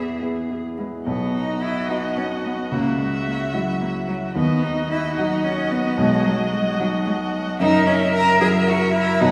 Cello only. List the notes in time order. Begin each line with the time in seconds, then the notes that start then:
Already playing: E3
0.78 G#3
1.06 B3
1.34 D#4
1.62 E4
1.89 D#4
2.16 C#4
2.45 B3
2.72 A#3
2.99 G#3
3.26 A#3
3.53 G#3
3.81 A#3
4.08 F#3
4.35 B3
4.63 D#4
4.90 E4
5.16 D#4
5.43 C#4
5.71 B3
5.97 G#3
6.25 F#3
6.52 G#3
6.79 F#3
7.06 G#3
7.60 D#4
7.87 C#4
8.14 A#4
8.40 G#4
8.67 F#4
8.93 E4
9.20 D#4